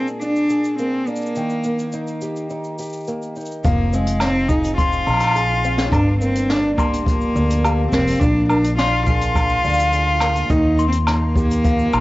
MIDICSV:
0, 0, Header, 1, 6, 480
1, 0, Start_track
1, 0, Tempo, 571429
1, 1142, Time_signature, 4, 2, 24, 8
1, 10084, End_track
2, 0, Start_track
2, 0, Title_t, "Celesta"
2, 0, Program_c, 0, 8
2, 3064, Note_on_c, 0, 77, 75
2, 3236, Control_c, 0, 64, 127
2, 3291, Note_off_c, 0, 77, 0
2, 4016, Note_on_c, 0, 84, 101
2, 4156, Note_off_c, 0, 84, 0
2, 4746, Note_on_c, 0, 77, 79
2, 4972, Note_off_c, 0, 77, 0
2, 4992, Control_c, 0, 64, 0
2, 5163, Control_c, 0, 64, 127
2, 5708, Note_on_c, 0, 84, 97
2, 5842, Note_off_c, 0, 84, 0
2, 6429, Note_on_c, 0, 77, 68
2, 6653, Note_off_c, 0, 77, 0
2, 6913, Control_c, 0, 64, 0
2, 7071, Control_c, 0, 64, 127
2, 7381, Note_on_c, 0, 84, 103
2, 7518, Note_off_c, 0, 84, 0
2, 8106, Note_on_c, 0, 77, 74
2, 8332, Note_off_c, 0, 77, 0
2, 8833, Control_c, 0, 64, 0
2, 9000, Control_c, 0, 64, 127
2, 9061, Note_on_c, 0, 84, 102
2, 9198, Note_off_c, 0, 84, 0
2, 9779, Note_on_c, 0, 77, 83
2, 10009, Note_off_c, 0, 77, 0
2, 10024, Note_on_c, 0, 84, 98
2, 10084, Note_off_c, 0, 84, 0
2, 10084, End_track
3, 0, Start_track
3, 0, Title_t, "Steel-string acoustic guitar"
3, 0, Program_c, 1, 25
3, 0, Note_on_c, 1, 46, 71
3, 0, Note_on_c, 1, 58, 53
3, 0, Note_on_c, 1, 62, 57
3, 0, Note_on_c, 1, 68, 61
3, 175, Note_off_c, 1, 62, 0
3, 185, Note_on_c, 1, 62, 48
3, 412, Note_off_c, 1, 68, 0
3, 422, Note_on_c, 1, 68, 64
3, 661, Note_off_c, 1, 58, 0
3, 664, Note_on_c, 1, 58, 58
3, 896, Note_off_c, 1, 62, 0
3, 906, Note_on_c, 1, 62, 53
3, 1143, Note_on_c, 1, 51, 73
3, 1144, Note_off_c, 1, 46, 0
3, 1190, Note_off_c, 1, 68, 0
3, 1192, Note_off_c, 1, 62, 0
3, 1381, Note_off_c, 1, 58, 0
3, 1384, Note_on_c, 1, 58, 50
3, 1623, Note_on_c, 1, 63, 61
3, 1864, Note_on_c, 1, 67, 60
3, 2099, Note_off_c, 1, 63, 0
3, 2103, Note_on_c, 1, 63, 55
3, 2335, Note_off_c, 1, 67, 0
3, 2345, Note_on_c, 1, 67, 64
3, 2575, Note_off_c, 1, 58, 0
3, 2585, Note_on_c, 1, 58, 60
3, 2823, Note_off_c, 1, 63, 0
3, 2826, Note_on_c, 1, 63, 54
3, 3061, Note_on_c, 1, 53, 77
3, 3087, Note_off_c, 1, 51, 0
3, 3112, Note_off_c, 1, 58, 0
3, 3112, Note_off_c, 1, 67, 0
3, 3303, Note_on_c, 1, 60, 53
3, 3540, Note_off_c, 1, 63, 0
3, 3543, Note_on_c, 1, 63, 65
3, 3785, Note_on_c, 1, 68, 67
3, 4013, Note_off_c, 1, 60, 0
3, 4023, Note_on_c, 1, 60, 65
3, 4252, Note_off_c, 1, 63, 0
3, 4262, Note_on_c, 1, 63, 64
3, 4491, Note_off_c, 1, 68, 0
3, 4501, Note_on_c, 1, 68, 75
3, 4731, Note_off_c, 1, 60, 0
3, 4741, Note_on_c, 1, 60, 66
3, 4979, Note_on_c, 1, 43, 83
3, 5005, Note_off_c, 1, 53, 0
3, 5029, Note_off_c, 1, 68, 0
3, 5030, Note_off_c, 1, 60, 0
3, 5030, Note_off_c, 1, 63, 0
3, 5220, Note_on_c, 1, 58, 54
3, 5465, Note_on_c, 1, 62, 69
3, 5706, Note_on_c, 1, 67, 68
3, 5944, Note_on_c, 1, 53, 66
3, 6177, Note_off_c, 1, 62, 0
3, 6180, Note_on_c, 1, 62, 66
3, 6411, Note_off_c, 1, 67, 0
3, 6421, Note_on_c, 1, 67, 69
3, 6661, Note_off_c, 1, 58, 0
3, 6664, Note_on_c, 1, 58, 65
3, 6898, Note_off_c, 1, 43, 0
3, 6902, Note_on_c, 1, 46, 85
3, 6950, Note_off_c, 1, 67, 0
3, 7137, Note_off_c, 1, 58, 0
3, 7141, Note_on_c, 1, 58, 56
3, 7377, Note_off_c, 1, 62, 0
3, 7380, Note_on_c, 1, 62, 64
3, 7620, Note_on_c, 1, 68, 72
3, 7860, Note_off_c, 1, 53, 0
3, 7863, Note_on_c, 1, 53, 69
3, 8090, Note_off_c, 1, 62, 0
3, 8100, Note_on_c, 1, 62, 69
3, 8330, Note_off_c, 1, 68, 0
3, 8340, Note_on_c, 1, 68, 71
3, 8579, Note_off_c, 1, 58, 0
3, 8582, Note_on_c, 1, 58, 63
3, 8818, Note_on_c, 1, 51, 84
3, 8822, Note_off_c, 1, 46, 0
3, 8869, Note_off_c, 1, 62, 0
3, 8869, Note_off_c, 1, 68, 0
3, 9056, Note_off_c, 1, 58, 0
3, 9060, Note_on_c, 1, 58, 56
3, 9300, Note_on_c, 1, 63, 62
3, 9325, Note_off_c, 1, 53, 0
3, 9539, Note_on_c, 1, 67, 65
3, 9780, Note_on_c, 1, 53, 65
3, 10016, Note_off_c, 1, 63, 0
3, 10019, Note_on_c, 1, 63, 62
3, 10084, Note_off_c, 1, 51, 0
3, 10084, Note_off_c, 1, 53, 0
3, 10084, Note_off_c, 1, 58, 0
3, 10084, Note_off_c, 1, 63, 0
3, 10084, Note_off_c, 1, 67, 0
3, 10084, End_track
4, 0, Start_track
4, 0, Title_t, "Cello"
4, 0, Program_c, 2, 42
4, 182, Note_on_c, 2, 62, 93
4, 628, Note_off_c, 2, 62, 0
4, 668, Note_on_c, 2, 60, 86
4, 907, Note_on_c, 2, 58, 95
4, 920, Note_off_c, 2, 60, 0
4, 1865, Note_off_c, 2, 58, 0
4, 3063, Note_on_c, 2, 58, 95
4, 3309, Note_on_c, 2, 56, 92
4, 3321, Note_off_c, 2, 58, 0
4, 3532, Note_on_c, 2, 60, 112
4, 3544, Note_off_c, 2, 56, 0
4, 3772, Note_on_c, 2, 63, 100
4, 3785, Note_off_c, 2, 60, 0
4, 4009, Note_off_c, 2, 63, 0
4, 4014, Note_on_c, 2, 65, 111
4, 4944, Note_off_c, 2, 65, 0
4, 4981, Note_on_c, 2, 62, 97
4, 5205, Note_off_c, 2, 62, 0
4, 5220, Note_on_c, 2, 60, 93
4, 5457, Note_on_c, 2, 62, 106
4, 5469, Note_off_c, 2, 60, 0
4, 5684, Note_off_c, 2, 62, 0
4, 5689, Note_on_c, 2, 58, 87
4, 5918, Note_off_c, 2, 58, 0
4, 5932, Note_on_c, 2, 58, 106
4, 6623, Note_off_c, 2, 58, 0
4, 6654, Note_on_c, 2, 60, 108
4, 6885, Note_on_c, 2, 62, 107
4, 6898, Note_off_c, 2, 60, 0
4, 7129, Note_off_c, 2, 62, 0
4, 7134, Note_on_c, 2, 62, 92
4, 7361, Note_off_c, 2, 62, 0
4, 7381, Note_on_c, 2, 65, 113
4, 7605, Note_off_c, 2, 65, 0
4, 7617, Note_on_c, 2, 65, 113
4, 8823, Note_on_c, 2, 63, 104
4, 8836, Note_off_c, 2, 65, 0
4, 9133, Note_off_c, 2, 63, 0
4, 9138, Note_on_c, 2, 60, 83
4, 9211, Note_off_c, 2, 60, 0
4, 9296, Note_on_c, 2, 58, 114
4, 10084, Note_off_c, 2, 58, 0
4, 10084, End_track
5, 0, Start_track
5, 0, Title_t, "Upright bass"
5, 0, Program_c, 3, 32
5, 3065, Note_on_c, 3, 29, 91
5, 4196, Note_off_c, 3, 29, 0
5, 4259, Note_on_c, 3, 34, 79
5, 4913, Note_off_c, 3, 34, 0
5, 4974, Note_on_c, 3, 31, 97
5, 6110, Note_off_c, 3, 31, 0
5, 6179, Note_on_c, 3, 38, 99
5, 6593, Note_off_c, 3, 38, 0
5, 6656, Note_on_c, 3, 29, 91
5, 6814, Note_off_c, 3, 29, 0
5, 6898, Note_on_c, 3, 34, 97
5, 8032, Note_off_c, 3, 34, 0
5, 8102, Note_on_c, 3, 38, 74
5, 8755, Note_off_c, 3, 38, 0
5, 8818, Note_on_c, 3, 39, 102
5, 9953, Note_off_c, 3, 39, 0
5, 10022, Note_on_c, 3, 34, 78
5, 10084, Note_off_c, 3, 34, 0
5, 10084, End_track
6, 0, Start_track
6, 0, Title_t, "Drums"
6, 61, Note_on_c, 9, 69, 34
6, 145, Note_off_c, 9, 69, 0
6, 178, Note_on_c, 9, 69, 49
6, 262, Note_off_c, 9, 69, 0
6, 301, Note_on_c, 9, 69, 42
6, 385, Note_off_c, 9, 69, 0
6, 417, Note_on_c, 9, 69, 66
6, 501, Note_off_c, 9, 69, 0
6, 539, Note_on_c, 9, 69, 48
6, 623, Note_off_c, 9, 69, 0
6, 659, Note_on_c, 9, 69, 46
6, 743, Note_off_c, 9, 69, 0
6, 896, Note_on_c, 9, 69, 34
6, 973, Note_off_c, 9, 69, 0
6, 973, Note_on_c, 9, 69, 48
6, 1020, Note_off_c, 9, 69, 0
6, 1020, Note_on_c, 9, 69, 38
6, 1058, Note_off_c, 9, 69, 0
6, 1058, Note_on_c, 9, 69, 55
6, 1138, Note_off_c, 9, 69, 0
6, 1138, Note_on_c, 9, 69, 52
6, 1222, Note_off_c, 9, 69, 0
6, 1257, Note_on_c, 9, 69, 41
6, 1341, Note_off_c, 9, 69, 0
6, 1374, Note_on_c, 9, 69, 76
6, 1458, Note_off_c, 9, 69, 0
6, 1502, Note_on_c, 9, 69, 47
6, 1586, Note_off_c, 9, 69, 0
6, 1614, Note_on_c, 9, 69, 53
6, 1698, Note_off_c, 9, 69, 0
6, 1741, Note_on_c, 9, 69, 38
6, 1825, Note_off_c, 9, 69, 0
6, 1859, Note_on_c, 9, 69, 65
6, 1943, Note_off_c, 9, 69, 0
6, 1984, Note_on_c, 9, 69, 41
6, 2068, Note_off_c, 9, 69, 0
6, 2099, Note_on_c, 9, 69, 41
6, 2183, Note_off_c, 9, 69, 0
6, 2218, Note_on_c, 9, 69, 35
6, 2302, Note_off_c, 9, 69, 0
6, 2339, Note_on_c, 9, 69, 65
6, 2368, Note_off_c, 9, 69, 0
6, 2368, Note_on_c, 9, 69, 57
6, 2398, Note_off_c, 9, 69, 0
6, 2398, Note_on_c, 9, 69, 40
6, 2429, Note_off_c, 9, 69, 0
6, 2429, Note_on_c, 9, 69, 37
6, 2460, Note_off_c, 9, 69, 0
6, 2460, Note_on_c, 9, 69, 45
6, 2493, Note_off_c, 9, 69, 0
6, 2493, Note_on_c, 9, 69, 28
6, 2520, Note_off_c, 9, 69, 0
6, 2520, Note_on_c, 9, 69, 23
6, 2554, Note_off_c, 9, 69, 0
6, 2554, Note_on_c, 9, 69, 18
6, 2583, Note_off_c, 9, 69, 0
6, 2583, Note_on_c, 9, 69, 52
6, 2667, Note_off_c, 9, 69, 0
6, 2706, Note_on_c, 9, 69, 43
6, 2790, Note_off_c, 9, 69, 0
6, 2821, Note_on_c, 9, 69, 30
6, 2859, Note_off_c, 9, 69, 0
6, 2859, Note_on_c, 9, 69, 39
6, 2902, Note_off_c, 9, 69, 0
6, 2902, Note_on_c, 9, 69, 53
6, 2951, Note_off_c, 9, 69, 0
6, 2951, Note_on_c, 9, 69, 41
6, 3035, Note_off_c, 9, 69, 0
6, 3059, Note_on_c, 9, 69, 61
6, 3061, Note_on_c, 9, 42, 56
6, 3063, Note_on_c, 9, 36, 126
6, 3143, Note_off_c, 9, 69, 0
6, 3145, Note_off_c, 9, 42, 0
6, 3147, Note_off_c, 9, 36, 0
6, 3304, Note_on_c, 9, 69, 82
6, 3388, Note_off_c, 9, 69, 0
6, 3417, Note_on_c, 9, 42, 68
6, 3422, Note_on_c, 9, 69, 54
6, 3501, Note_off_c, 9, 42, 0
6, 3506, Note_off_c, 9, 69, 0
6, 3530, Note_on_c, 9, 77, 68
6, 3535, Note_on_c, 9, 38, 77
6, 3535, Note_on_c, 9, 69, 51
6, 3537, Note_on_c, 9, 42, 63
6, 3614, Note_off_c, 9, 77, 0
6, 3619, Note_off_c, 9, 38, 0
6, 3619, Note_off_c, 9, 69, 0
6, 3621, Note_off_c, 9, 42, 0
6, 3774, Note_on_c, 9, 69, 80
6, 3775, Note_on_c, 9, 36, 93
6, 3858, Note_off_c, 9, 69, 0
6, 3859, Note_off_c, 9, 36, 0
6, 3897, Note_on_c, 9, 69, 45
6, 3903, Note_on_c, 9, 42, 73
6, 3981, Note_off_c, 9, 69, 0
6, 3987, Note_off_c, 9, 42, 0
6, 4018, Note_on_c, 9, 36, 111
6, 4019, Note_on_c, 9, 42, 53
6, 4026, Note_on_c, 9, 69, 53
6, 4102, Note_off_c, 9, 36, 0
6, 4103, Note_off_c, 9, 42, 0
6, 4110, Note_off_c, 9, 69, 0
6, 4137, Note_on_c, 9, 69, 50
6, 4221, Note_off_c, 9, 69, 0
6, 4258, Note_on_c, 9, 77, 33
6, 4263, Note_on_c, 9, 69, 73
6, 4288, Note_off_c, 9, 77, 0
6, 4288, Note_on_c, 9, 77, 37
6, 4318, Note_off_c, 9, 77, 0
6, 4318, Note_on_c, 9, 77, 43
6, 4344, Note_off_c, 9, 77, 0
6, 4344, Note_on_c, 9, 77, 46
6, 4347, Note_off_c, 9, 69, 0
6, 4369, Note_on_c, 9, 42, 76
6, 4370, Note_on_c, 9, 69, 52
6, 4374, Note_off_c, 9, 77, 0
6, 4374, Note_on_c, 9, 77, 53
6, 4405, Note_off_c, 9, 77, 0
6, 4405, Note_on_c, 9, 77, 57
6, 4431, Note_off_c, 9, 77, 0
6, 4431, Note_on_c, 9, 77, 64
6, 4453, Note_off_c, 9, 42, 0
6, 4454, Note_off_c, 9, 69, 0
6, 4464, Note_off_c, 9, 77, 0
6, 4464, Note_on_c, 9, 77, 72
6, 4498, Note_on_c, 9, 69, 55
6, 4500, Note_on_c, 9, 42, 58
6, 4548, Note_off_c, 9, 77, 0
6, 4582, Note_off_c, 9, 69, 0
6, 4584, Note_off_c, 9, 42, 0
6, 4740, Note_on_c, 9, 69, 93
6, 4824, Note_off_c, 9, 69, 0
6, 4856, Note_on_c, 9, 38, 64
6, 4859, Note_on_c, 9, 42, 66
6, 4861, Note_on_c, 9, 69, 47
6, 4940, Note_off_c, 9, 38, 0
6, 4943, Note_off_c, 9, 42, 0
6, 4945, Note_off_c, 9, 69, 0
6, 4972, Note_on_c, 9, 36, 127
6, 4977, Note_on_c, 9, 69, 54
6, 4977, Note_on_c, 9, 77, 73
6, 4981, Note_on_c, 9, 42, 54
6, 5056, Note_off_c, 9, 36, 0
6, 5061, Note_off_c, 9, 69, 0
6, 5061, Note_off_c, 9, 77, 0
6, 5065, Note_off_c, 9, 42, 0
6, 5220, Note_on_c, 9, 69, 87
6, 5304, Note_off_c, 9, 69, 0
6, 5337, Note_on_c, 9, 42, 63
6, 5339, Note_on_c, 9, 69, 46
6, 5421, Note_off_c, 9, 42, 0
6, 5423, Note_off_c, 9, 69, 0
6, 5459, Note_on_c, 9, 38, 77
6, 5462, Note_on_c, 9, 69, 61
6, 5464, Note_on_c, 9, 42, 62
6, 5543, Note_off_c, 9, 38, 0
6, 5546, Note_off_c, 9, 69, 0
6, 5548, Note_off_c, 9, 42, 0
6, 5695, Note_on_c, 9, 36, 101
6, 5698, Note_on_c, 9, 77, 61
6, 5703, Note_on_c, 9, 69, 80
6, 5779, Note_off_c, 9, 36, 0
6, 5782, Note_off_c, 9, 77, 0
6, 5787, Note_off_c, 9, 69, 0
6, 5823, Note_on_c, 9, 42, 69
6, 5828, Note_on_c, 9, 69, 45
6, 5907, Note_off_c, 9, 42, 0
6, 5912, Note_off_c, 9, 69, 0
6, 5935, Note_on_c, 9, 36, 115
6, 5943, Note_on_c, 9, 69, 56
6, 5944, Note_on_c, 9, 42, 57
6, 6019, Note_off_c, 9, 36, 0
6, 6027, Note_off_c, 9, 69, 0
6, 6028, Note_off_c, 9, 42, 0
6, 6059, Note_on_c, 9, 69, 45
6, 6143, Note_off_c, 9, 69, 0
6, 6185, Note_on_c, 9, 69, 78
6, 6269, Note_off_c, 9, 69, 0
6, 6304, Note_on_c, 9, 42, 79
6, 6305, Note_on_c, 9, 69, 59
6, 6388, Note_off_c, 9, 42, 0
6, 6389, Note_off_c, 9, 69, 0
6, 6422, Note_on_c, 9, 42, 62
6, 6422, Note_on_c, 9, 77, 73
6, 6428, Note_on_c, 9, 69, 55
6, 6506, Note_off_c, 9, 42, 0
6, 6506, Note_off_c, 9, 77, 0
6, 6512, Note_off_c, 9, 69, 0
6, 6655, Note_on_c, 9, 36, 68
6, 6656, Note_on_c, 9, 69, 87
6, 6662, Note_on_c, 9, 38, 79
6, 6739, Note_off_c, 9, 36, 0
6, 6740, Note_off_c, 9, 69, 0
6, 6746, Note_off_c, 9, 38, 0
6, 6780, Note_on_c, 9, 42, 56
6, 6781, Note_on_c, 9, 69, 47
6, 6799, Note_off_c, 9, 42, 0
6, 6799, Note_on_c, 9, 42, 47
6, 6818, Note_off_c, 9, 42, 0
6, 6818, Note_on_c, 9, 42, 37
6, 6837, Note_off_c, 9, 42, 0
6, 6837, Note_on_c, 9, 42, 31
6, 6856, Note_off_c, 9, 42, 0
6, 6856, Note_on_c, 9, 42, 26
6, 6865, Note_off_c, 9, 69, 0
6, 6878, Note_off_c, 9, 42, 0
6, 6878, Note_on_c, 9, 42, 20
6, 6892, Note_off_c, 9, 42, 0
6, 6892, Note_on_c, 9, 42, 55
6, 6897, Note_on_c, 9, 36, 127
6, 6900, Note_on_c, 9, 69, 58
6, 6976, Note_off_c, 9, 42, 0
6, 6981, Note_off_c, 9, 36, 0
6, 6984, Note_off_c, 9, 69, 0
6, 7135, Note_on_c, 9, 77, 64
6, 7139, Note_on_c, 9, 69, 95
6, 7219, Note_off_c, 9, 77, 0
6, 7223, Note_off_c, 9, 69, 0
6, 7256, Note_on_c, 9, 69, 52
6, 7258, Note_on_c, 9, 42, 72
6, 7340, Note_off_c, 9, 69, 0
6, 7342, Note_off_c, 9, 42, 0
6, 7378, Note_on_c, 9, 38, 79
6, 7382, Note_on_c, 9, 42, 60
6, 7389, Note_on_c, 9, 69, 57
6, 7462, Note_off_c, 9, 38, 0
6, 7466, Note_off_c, 9, 42, 0
6, 7473, Note_off_c, 9, 69, 0
6, 7616, Note_on_c, 9, 69, 94
6, 7618, Note_on_c, 9, 36, 104
6, 7700, Note_off_c, 9, 69, 0
6, 7702, Note_off_c, 9, 36, 0
6, 7737, Note_on_c, 9, 42, 66
6, 7740, Note_on_c, 9, 69, 47
6, 7821, Note_off_c, 9, 42, 0
6, 7824, Note_off_c, 9, 69, 0
6, 7856, Note_on_c, 9, 36, 113
6, 7859, Note_on_c, 9, 69, 56
6, 7859, Note_on_c, 9, 77, 65
6, 7861, Note_on_c, 9, 42, 59
6, 7940, Note_off_c, 9, 36, 0
6, 7943, Note_off_c, 9, 69, 0
6, 7943, Note_off_c, 9, 77, 0
6, 7945, Note_off_c, 9, 42, 0
6, 7975, Note_on_c, 9, 69, 53
6, 8059, Note_off_c, 9, 69, 0
6, 8100, Note_on_c, 9, 69, 43
6, 8138, Note_off_c, 9, 69, 0
6, 8138, Note_on_c, 9, 69, 56
6, 8178, Note_off_c, 9, 69, 0
6, 8178, Note_on_c, 9, 69, 72
6, 8216, Note_off_c, 9, 69, 0
6, 8216, Note_on_c, 9, 69, 57
6, 8225, Note_on_c, 9, 42, 69
6, 8300, Note_off_c, 9, 69, 0
6, 8309, Note_off_c, 9, 42, 0
6, 8334, Note_on_c, 9, 42, 52
6, 8336, Note_on_c, 9, 69, 57
6, 8418, Note_off_c, 9, 42, 0
6, 8420, Note_off_c, 9, 69, 0
6, 8570, Note_on_c, 9, 77, 73
6, 8574, Note_on_c, 9, 38, 79
6, 8577, Note_on_c, 9, 69, 86
6, 8654, Note_off_c, 9, 77, 0
6, 8658, Note_off_c, 9, 38, 0
6, 8661, Note_off_c, 9, 69, 0
6, 8696, Note_on_c, 9, 42, 56
6, 8699, Note_on_c, 9, 69, 48
6, 8780, Note_off_c, 9, 42, 0
6, 8783, Note_off_c, 9, 69, 0
6, 8815, Note_on_c, 9, 69, 60
6, 8816, Note_on_c, 9, 42, 50
6, 8818, Note_on_c, 9, 36, 127
6, 8899, Note_off_c, 9, 69, 0
6, 8900, Note_off_c, 9, 42, 0
6, 8902, Note_off_c, 9, 36, 0
6, 9063, Note_on_c, 9, 69, 77
6, 9147, Note_off_c, 9, 69, 0
6, 9173, Note_on_c, 9, 42, 72
6, 9180, Note_on_c, 9, 69, 57
6, 9257, Note_off_c, 9, 42, 0
6, 9264, Note_off_c, 9, 69, 0
6, 9297, Note_on_c, 9, 42, 53
6, 9297, Note_on_c, 9, 77, 79
6, 9303, Note_on_c, 9, 38, 78
6, 9307, Note_on_c, 9, 69, 56
6, 9381, Note_off_c, 9, 42, 0
6, 9381, Note_off_c, 9, 77, 0
6, 9387, Note_off_c, 9, 38, 0
6, 9391, Note_off_c, 9, 69, 0
6, 9538, Note_on_c, 9, 36, 99
6, 9547, Note_on_c, 9, 69, 81
6, 9622, Note_off_c, 9, 36, 0
6, 9631, Note_off_c, 9, 69, 0
6, 9663, Note_on_c, 9, 69, 52
6, 9665, Note_on_c, 9, 42, 68
6, 9747, Note_off_c, 9, 69, 0
6, 9749, Note_off_c, 9, 42, 0
6, 9782, Note_on_c, 9, 36, 109
6, 9782, Note_on_c, 9, 69, 57
6, 9784, Note_on_c, 9, 42, 52
6, 9866, Note_off_c, 9, 36, 0
6, 9866, Note_off_c, 9, 69, 0
6, 9868, Note_off_c, 9, 42, 0
6, 9902, Note_on_c, 9, 69, 46
6, 9986, Note_off_c, 9, 69, 0
6, 10024, Note_on_c, 9, 69, 78
6, 10025, Note_on_c, 9, 77, 78
6, 10084, Note_off_c, 9, 69, 0
6, 10084, Note_off_c, 9, 77, 0
6, 10084, End_track
0, 0, End_of_file